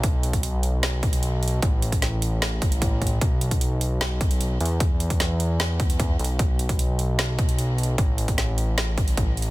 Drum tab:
HH |x---x-x-x---x---x---x-x-x---xx--|x---x-x-x---x---x---x-x-x---xx--|x---x-x-x---x---x---x-x-x---xx--|x---x-x-x---x---x---x-x-x---xx--|
SD |----------------o---------------|--------o-------o---------------|----------------o---------------|--------o-------o---------------|
BD |o-----o-------------o-----------|o-----o-------------o---o---o---|o-----o-------------o-----------|o-----o-------------o---o-------|

HH |x---x-x-x---x---x---x-x-x---xx--|x---x-x-x---x---x---x-x-x---xx--|
SD |----------------o---------------|--------o-------o---------------|
BD |o-----o-------------o-----------|o-----o-------------o---o-------|